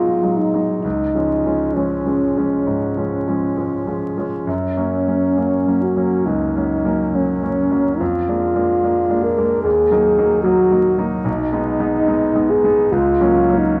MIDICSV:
0, 0, Header, 1, 3, 480
1, 0, Start_track
1, 0, Key_signature, 6, "major"
1, 0, Tempo, 920245
1, 441, Time_signature, 4, 2, 24, 8
1, 1399, Tempo, 894188
1, 3799, Tempo, 843882
1, 4759, Tempo, 811908
1, 6679, Tempo, 855920
1, 7639, End_track
2, 0, Start_track
2, 0, Title_t, "French horn"
2, 0, Program_c, 0, 60
2, 0, Note_on_c, 0, 65, 67
2, 194, Note_on_c, 0, 63, 51
2, 202, Note_off_c, 0, 65, 0
2, 430, Note_off_c, 0, 63, 0
2, 433, Note_on_c, 0, 63, 53
2, 915, Note_on_c, 0, 61, 43
2, 923, Note_off_c, 0, 63, 0
2, 2117, Note_off_c, 0, 61, 0
2, 2362, Note_on_c, 0, 61, 52
2, 3086, Note_on_c, 0, 66, 49
2, 3094, Note_off_c, 0, 61, 0
2, 3320, Note_on_c, 0, 63, 54
2, 3328, Note_off_c, 0, 66, 0
2, 3800, Note_on_c, 0, 61, 45
2, 3808, Note_off_c, 0, 63, 0
2, 4281, Note_on_c, 0, 65, 61
2, 4289, Note_off_c, 0, 61, 0
2, 4992, Note_on_c, 0, 70, 55
2, 5000, Note_off_c, 0, 65, 0
2, 5224, Note_off_c, 0, 70, 0
2, 5228, Note_on_c, 0, 68, 65
2, 5702, Note_off_c, 0, 68, 0
2, 5705, Note_on_c, 0, 66, 67
2, 6030, Note_off_c, 0, 66, 0
2, 6190, Note_on_c, 0, 63, 73
2, 6914, Note_on_c, 0, 68, 72
2, 6923, Note_off_c, 0, 63, 0
2, 7148, Note_on_c, 0, 65, 75
2, 7157, Note_off_c, 0, 68, 0
2, 7520, Note_on_c, 0, 63, 57
2, 7528, Note_off_c, 0, 65, 0
2, 7635, Note_off_c, 0, 63, 0
2, 7639, End_track
3, 0, Start_track
3, 0, Title_t, "Grand piano"
3, 0, Program_c, 1, 0
3, 0, Control_c, 1, 64, 127
3, 0, Note_on_c, 1, 47, 43
3, 0, Note_on_c, 1, 54, 28
3, 0, Note_on_c, 1, 56, 29
3, 0, Note_on_c, 1, 63, 31
3, 100, Note_off_c, 1, 54, 0
3, 101, Note_off_c, 1, 56, 0
3, 102, Note_off_c, 1, 63, 0
3, 117, Note_on_c, 1, 54, 27
3, 120, Note_on_c, 1, 63, 30
3, 121, Note_on_c, 1, 56, 28
3, 261, Note_off_c, 1, 54, 0
3, 263, Note_off_c, 1, 63, 0
3, 264, Note_off_c, 1, 56, 0
3, 281, Note_on_c, 1, 54, 27
3, 283, Note_on_c, 1, 56, 26
3, 286, Note_on_c, 1, 63, 30
3, 426, Note_off_c, 1, 54, 0
3, 427, Note_off_c, 1, 56, 0
3, 429, Note_off_c, 1, 63, 0
3, 440, Note_on_c, 1, 37, 36
3, 451, Control_c, 1, 64, 0
3, 453, Note_off_c, 1, 47, 0
3, 530, Control_c, 1, 64, 127
3, 599, Note_off_c, 1, 37, 0
3, 601, Note_on_c, 1, 53, 26
3, 603, Note_on_c, 1, 56, 25
3, 606, Note_on_c, 1, 61, 28
3, 747, Note_off_c, 1, 53, 0
3, 748, Note_off_c, 1, 56, 0
3, 749, Note_off_c, 1, 61, 0
3, 761, Note_on_c, 1, 53, 25
3, 761, Note_on_c, 1, 56, 28
3, 764, Note_on_c, 1, 61, 28
3, 906, Note_off_c, 1, 53, 0
3, 906, Note_off_c, 1, 56, 0
3, 908, Note_off_c, 1, 61, 0
3, 919, Note_on_c, 1, 53, 26
3, 923, Note_on_c, 1, 56, 26
3, 924, Note_on_c, 1, 61, 27
3, 1064, Note_off_c, 1, 53, 0
3, 1066, Note_off_c, 1, 56, 0
3, 1067, Note_off_c, 1, 61, 0
3, 1076, Note_on_c, 1, 53, 26
3, 1077, Note_on_c, 1, 56, 25
3, 1081, Note_on_c, 1, 61, 27
3, 1222, Note_off_c, 1, 53, 0
3, 1222, Note_off_c, 1, 56, 0
3, 1224, Note_off_c, 1, 61, 0
3, 1236, Note_on_c, 1, 53, 26
3, 1238, Note_on_c, 1, 56, 27
3, 1240, Note_on_c, 1, 61, 31
3, 1380, Note_off_c, 1, 53, 0
3, 1381, Note_off_c, 1, 56, 0
3, 1382, Note_off_c, 1, 61, 0
3, 1392, Note_on_c, 1, 44, 30
3, 1551, Note_off_c, 1, 44, 0
3, 1556, Note_on_c, 1, 53, 26
3, 1556, Note_on_c, 1, 56, 26
3, 1561, Note_on_c, 1, 61, 30
3, 1702, Note_off_c, 1, 53, 0
3, 1702, Note_off_c, 1, 56, 0
3, 1704, Note_off_c, 1, 61, 0
3, 1719, Note_on_c, 1, 53, 26
3, 1721, Note_on_c, 1, 56, 26
3, 1723, Note_on_c, 1, 61, 30
3, 1863, Note_off_c, 1, 53, 0
3, 1864, Note_off_c, 1, 56, 0
3, 1865, Note_off_c, 1, 61, 0
3, 1877, Note_on_c, 1, 56, 27
3, 1878, Note_on_c, 1, 53, 26
3, 1881, Note_on_c, 1, 61, 28
3, 2023, Note_off_c, 1, 53, 0
3, 2023, Note_off_c, 1, 56, 0
3, 2025, Note_off_c, 1, 61, 0
3, 2037, Note_on_c, 1, 53, 25
3, 2040, Note_on_c, 1, 56, 26
3, 2044, Note_on_c, 1, 61, 27
3, 2185, Note_off_c, 1, 53, 0
3, 2187, Note_off_c, 1, 56, 0
3, 2189, Note_off_c, 1, 61, 0
3, 2202, Note_on_c, 1, 53, 26
3, 2203, Note_on_c, 1, 56, 26
3, 2206, Note_on_c, 1, 61, 26
3, 2348, Note_off_c, 1, 53, 0
3, 2349, Note_off_c, 1, 56, 0
3, 2351, Note_off_c, 1, 61, 0
3, 2359, Note_on_c, 1, 42, 38
3, 2374, Control_c, 1, 64, 0
3, 2455, Control_c, 1, 64, 127
3, 2519, Note_off_c, 1, 42, 0
3, 2521, Note_on_c, 1, 54, 26
3, 2523, Note_on_c, 1, 58, 25
3, 2523, Note_on_c, 1, 61, 28
3, 2670, Note_off_c, 1, 54, 0
3, 2671, Note_off_c, 1, 58, 0
3, 2671, Note_off_c, 1, 61, 0
3, 2686, Note_on_c, 1, 54, 27
3, 2687, Note_on_c, 1, 58, 26
3, 2690, Note_on_c, 1, 61, 28
3, 2833, Note_off_c, 1, 54, 0
3, 2833, Note_off_c, 1, 58, 0
3, 2835, Note_off_c, 1, 61, 0
3, 2845, Note_on_c, 1, 54, 26
3, 2847, Note_on_c, 1, 58, 25
3, 2848, Note_on_c, 1, 61, 28
3, 2991, Note_off_c, 1, 54, 0
3, 2992, Note_off_c, 1, 58, 0
3, 2992, Note_off_c, 1, 61, 0
3, 3007, Note_on_c, 1, 54, 28
3, 3008, Note_on_c, 1, 58, 27
3, 3010, Note_on_c, 1, 61, 29
3, 3150, Note_off_c, 1, 54, 0
3, 3151, Note_off_c, 1, 58, 0
3, 3152, Note_off_c, 1, 61, 0
3, 3160, Note_on_c, 1, 54, 27
3, 3163, Note_on_c, 1, 58, 28
3, 3164, Note_on_c, 1, 61, 30
3, 3306, Note_off_c, 1, 54, 0
3, 3307, Note_off_c, 1, 58, 0
3, 3308, Note_off_c, 1, 61, 0
3, 3320, Note_on_c, 1, 37, 32
3, 3476, Note_off_c, 1, 37, 0
3, 3479, Note_on_c, 1, 54, 28
3, 3482, Note_on_c, 1, 58, 28
3, 3486, Note_on_c, 1, 61, 30
3, 3624, Note_off_c, 1, 54, 0
3, 3625, Note_off_c, 1, 58, 0
3, 3627, Note_off_c, 1, 61, 0
3, 3636, Note_on_c, 1, 54, 28
3, 3637, Note_on_c, 1, 58, 30
3, 3640, Note_on_c, 1, 61, 30
3, 3779, Note_off_c, 1, 54, 0
3, 3780, Note_off_c, 1, 58, 0
3, 3781, Note_off_c, 1, 61, 0
3, 3793, Note_on_c, 1, 54, 29
3, 3795, Note_on_c, 1, 58, 28
3, 3797, Note_on_c, 1, 61, 32
3, 3941, Note_off_c, 1, 54, 0
3, 3943, Note_off_c, 1, 58, 0
3, 3944, Note_off_c, 1, 61, 0
3, 3954, Note_on_c, 1, 54, 27
3, 3957, Note_on_c, 1, 58, 27
3, 3957, Note_on_c, 1, 61, 30
3, 4101, Note_off_c, 1, 54, 0
3, 4103, Note_off_c, 1, 58, 0
3, 4103, Note_off_c, 1, 61, 0
3, 4112, Note_on_c, 1, 54, 29
3, 4117, Note_on_c, 1, 58, 28
3, 4119, Note_on_c, 1, 61, 32
3, 4260, Note_off_c, 1, 54, 0
3, 4263, Note_off_c, 1, 58, 0
3, 4264, Note_off_c, 1, 61, 0
3, 4281, Note_on_c, 1, 41, 41
3, 4291, Control_c, 1, 64, 0
3, 4373, Control_c, 1, 64, 127
3, 4436, Note_off_c, 1, 41, 0
3, 4439, Note_on_c, 1, 56, 30
3, 4441, Note_on_c, 1, 58, 28
3, 4444, Note_on_c, 1, 62, 30
3, 4583, Note_off_c, 1, 56, 0
3, 4585, Note_off_c, 1, 58, 0
3, 4586, Note_off_c, 1, 62, 0
3, 4592, Note_on_c, 1, 56, 31
3, 4597, Note_on_c, 1, 58, 30
3, 4598, Note_on_c, 1, 62, 34
3, 4738, Note_off_c, 1, 56, 0
3, 4740, Note_off_c, 1, 58, 0
3, 4741, Note_off_c, 1, 62, 0
3, 4754, Note_on_c, 1, 56, 28
3, 4757, Note_on_c, 1, 58, 28
3, 4760, Note_on_c, 1, 62, 34
3, 4901, Note_off_c, 1, 56, 0
3, 4903, Note_off_c, 1, 58, 0
3, 4904, Note_off_c, 1, 62, 0
3, 4910, Note_on_c, 1, 56, 30
3, 4912, Note_on_c, 1, 58, 29
3, 4917, Note_on_c, 1, 62, 33
3, 5058, Note_off_c, 1, 56, 0
3, 5059, Note_off_c, 1, 58, 0
3, 5061, Note_off_c, 1, 62, 0
3, 5075, Note_on_c, 1, 56, 33
3, 5076, Note_on_c, 1, 58, 33
3, 5078, Note_on_c, 1, 62, 34
3, 5220, Note_off_c, 1, 56, 0
3, 5221, Note_off_c, 1, 58, 0
3, 5222, Note_off_c, 1, 62, 0
3, 5230, Note_on_c, 1, 39, 42
3, 5249, Control_c, 1, 64, 0
3, 5351, Control_c, 1, 64, 127
3, 5389, Note_off_c, 1, 39, 0
3, 5390, Note_on_c, 1, 54, 34
3, 5395, Note_on_c, 1, 58, 34
3, 5396, Note_on_c, 1, 63, 37
3, 5537, Note_off_c, 1, 54, 0
3, 5540, Note_off_c, 1, 58, 0
3, 5541, Note_off_c, 1, 63, 0
3, 5552, Note_on_c, 1, 54, 34
3, 5554, Note_on_c, 1, 58, 35
3, 5555, Note_on_c, 1, 63, 38
3, 5697, Note_off_c, 1, 54, 0
3, 5697, Note_off_c, 1, 58, 0
3, 5699, Note_off_c, 1, 63, 0
3, 5706, Note_on_c, 1, 54, 36
3, 5706, Note_on_c, 1, 58, 36
3, 5708, Note_on_c, 1, 63, 36
3, 5854, Note_off_c, 1, 54, 0
3, 5854, Note_off_c, 1, 58, 0
3, 5855, Note_off_c, 1, 63, 0
3, 5865, Note_on_c, 1, 54, 33
3, 5868, Note_on_c, 1, 58, 33
3, 5870, Note_on_c, 1, 63, 37
3, 6013, Note_off_c, 1, 54, 0
3, 6015, Note_off_c, 1, 58, 0
3, 6016, Note_off_c, 1, 63, 0
3, 6024, Note_on_c, 1, 54, 34
3, 6028, Note_on_c, 1, 58, 35
3, 6028, Note_on_c, 1, 63, 41
3, 6171, Note_off_c, 1, 54, 0
3, 6174, Note_off_c, 1, 58, 0
3, 6174, Note_off_c, 1, 63, 0
3, 6184, Note_on_c, 1, 35, 46
3, 6202, Control_c, 1, 64, 0
3, 6279, Control_c, 1, 64, 127
3, 6343, Note_off_c, 1, 35, 0
3, 6345, Note_on_c, 1, 56, 35
3, 6347, Note_on_c, 1, 59, 35
3, 6350, Note_on_c, 1, 63, 39
3, 6494, Note_off_c, 1, 56, 0
3, 6495, Note_off_c, 1, 59, 0
3, 6497, Note_off_c, 1, 63, 0
3, 6503, Note_on_c, 1, 56, 37
3, 6505, Note_on_c, 1, 59, 39
3, 6509, Note_on_c, 1, 63, 41
3, 6656, Note_off_c, 1, 56, 0
3, 6657, Note_off_c, 1, 59, 0
3, 6659, Note_off_c, 1, 63, 0
3, 6670, Note_on_c, 1, 56, 37
3, 6671, Note_on_c, 1, 59, 35
3, 6672, Note_on_c, 1, 63, 37
3, 6815, Note_off_c, 1, 56, 0
3, 6815, Note_off_c, 1, 59, 0
3, 6816, Note_off_c, 1, 63, 0
3, 6824, Note_on_c, 1, 56, 36
3, 6828, Note_on_c, 1, 59, 35
3, 6828, Note_on_c, 1, 63, 40
3, 6970, Note_off_c, 1, 56, 0
3, 6972, Note_off_c, 1, 59, 0
3, 6972, Note_off_c, 1, 63, 0
3, 6988, Note_on_c, 1, 56, 38
3, 6988, Note_on_c, 1, 59, 41
3, 6992, Note_on_c, 1, 63, 42
3, 7132, Note_off_c, 1, 56, 0
3, 7132, Note_off_c, 1, 59, 0
3, 7134, Note_off_c, 1, 63, 0
3, 7145, Note_on_c, 1, 37, 49
3, 7158, Control_c, 1, 64, 0
3, 7257, Control_c, 1, 64, 127
3, 7303, Note_off_c, 1, 37, 0
3, 7304, Note_on_c, 1, 54, 40
3, 7306, Note_on_c, 1, 58, 37
3, 7310, Note_on_c, 1, 61, 41
3, 7454, Note_off_c, 1, 54, 0
3, 7455, Note_off_c, 1, 58, 0
3, 7457, Note_off_c, 1, 61, 0
3, 7468, Note_on_c, 1, 54, 37
3, 7470, Note_on_c, 1, 58, 38
3, 7472, Note_on_c, 1, 61, 41
3, 7620, Note_off_c, 1, 54, 0
3, 7621, Note_off_c, 1, 58, 0
3, 7622, Note_off_c, 1, 61, 0
3, 7639, End_track
0, 0, End_of_file